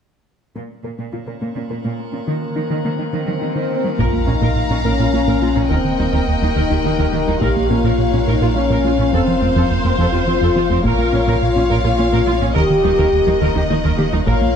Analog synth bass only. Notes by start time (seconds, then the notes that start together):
3.99 A#2
4.13 A#3
4.28 A#2
4.42 A#2
4.56 A#2
4.70 A#2
4.85 A#2
4.99 A#2
5.13 A#3
5.28 A#2
5.42 A#3
5.57 A#2
5.71 D#2
5.85 D#3
5.99 D#2
6.13 D#2
6.28 D#2
6.42 D#2
6.56 D#2
6.71 D#2
6.86 D#3
6.99 D#2
7.14 D#3
7.28 D#2
7.41 A#2
7.56 A#3
7.70 A#2
7.84 A#2
7.98 A#2
8.13 A#2
8.27 A#2
8.41 A#2
8.56 A#3
8.70 A#2
8.85 A#3
8.99 A#2
9.13 F2
9.28 F3
9.42 F2
9.56 F2
9.71 F2
9.85 F2
9.99 F2
10.13 F2
10.27 F3
10.42 F2
10.56 F3
10.71 F2
10.85 A#2
10.99 A#3
11.13 A#2
11.28 A#2
11.42 A#2
11.57 A#2
11.71 A#2
11.85 A#2
11.99 A#3
12.14 A#2
12.27 A#3
12.42 A#2
12.56 D#2
12.70 D#3
12.84 D#2
12.99 D#2
13.13 D#2
13.27 D#2
13.41 D#2
13.56 D#2
13.71 D#3
13.84 D#2
13.99 D#3
14.13 D#2
14.27 A#2
14.41 A#3